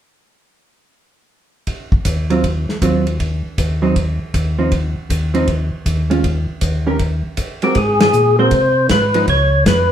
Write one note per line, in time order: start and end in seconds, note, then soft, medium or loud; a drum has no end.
1.67 kick soft
1.67 ride soft
1.92 kick soft
2.05 2.67 D#2 medium
2.05 kick soft
2.05 hi-hat pedal soft
2.05 ride medium
2.30 2.42 F#3 soft
2.30 2.43 C4 medium
2.30 2.43 F4 medium
2.30 ride soft
2.44 kick soft
2.44 ride soft
2.69 snare soft
2.81 3.43 D#2 medium
2.81 3.04 F#3 soft
2.81 3.04 C4 soft
2.81 3.05 F4 medium
2.81 kick soft
2.81 hi-hat pedal medium
2.81 ride soft
3.07 ride soft
3.20 kick soft
3.20 ride soft
3.58 4.19 D#2 medium
3.58 kick soft
3.58 hi-hat pedal soft
3.58 ride medium
3.82 3.94 F#3 medium
3.82 3.94 C4 medium
3.82 3.95 D#4 medium
3.96 kick soft
3.96 ride soft
4.34 4.95 D#2 medium
4.34 kick soft
4.34 hi-hat pedal soft
4.34 ride soft
4.59 4.71 F3 soft
4.59 4.71 C4 soft
4.59 4.71 D#4 medium
4.72 kick soft
4.72 ride soft
5.09 5.71 D#2 medium
5.09 kick soft
5.09 hi-hat pedal medium
5.09 ride medium
5.34 5.46 F3 soft
5.34 5.47 C4 medium
5.34 5.47 D#4 medium
5.34 ride soft
5.48 kick soft
5.48 ride soft
5.85 6.47 D#2 medium
5.85 kick soft
5.85 hi-hat pedal soft
5.85 ride soft
6.10 6.22 G#3 medium
6.10 6.23 C#4 medium
6.10 6.23 F4 medium
6.10 ride soft
6.24 kick soft
6.24 ride soft
6.61 7.23 D#2 medium
6.61 kick soft
6.61 hi-hat pedal soft
6.61 ride medium
6.87 6.99 D#3 soft
6.87 6.99 C#4 medium
6.87 6.99 G4 medium
6.87 6.99 A#4 medium
6.99 kick soft
6.99 ride soft
7.37 kick soft
7.37 hi-hat pedal soft
7.37 ride medium
7.62 7.75 G#3 medium
7.62 7.75 C4 medium
7.62 7.75 F#4 medium
7.62 7.77 G4 medium
7.62 7.75 A#4 medium
7.62 ride soft
7.75 8.13 G#2 medium
7.75 8.00 G#4 medium
7.75 kick soft
7.75 ride soft
8.00 8.36 G#4 loud
8.00 snare medium
8.00 ride medium
8.13 8.51 A#2 medium
8.13 hi-hat pedal soft
8.39 8.51 G#3 medium
8.39 8.51 C4 medium
8.39 8.51 F#4 medium
8.39 8.51 A#4 medium
8.39 8.87 C5 loud
8.51 8.89 C3 medium
8.51 kick soft
8.51 ride medium
8.89 9.27 G#2 medium
8.89 9.26 B4 medium
8.89 kick soft
8.89 snare medium
8.89 hi-hat pedal soft
8.89 ride medium
9.14 9.27 F3 medium
9.14 9.27 B3 medium
9.14 9.27 D#4 medium
9.14 ride soft
9.28 9.65 C#2 medium
9.28 9.64 C#5 medium
9.28 kick soft
9.28 ride soft
9.65 9.92 F2 medium
9.65 9.92 B4 medium
9.65 kick soft
9.65 snare medium
9.65 hi-hat pedal medium
9.65 ride medium